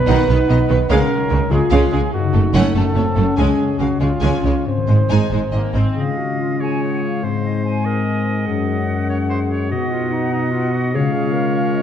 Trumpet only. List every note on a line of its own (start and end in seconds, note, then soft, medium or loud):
0.00 0.89 B4 medium
0.89 1.53 A#4 medium
1.52 2.13 G#4 medium
2.14 2.53 F#4 medium
2.75 3.34 A4 medium
3.38 3.79 G#4 medium
3.80 4.00 F#4 medium
4.01 4.66 F4 medium
4.67 5.73 C5 medium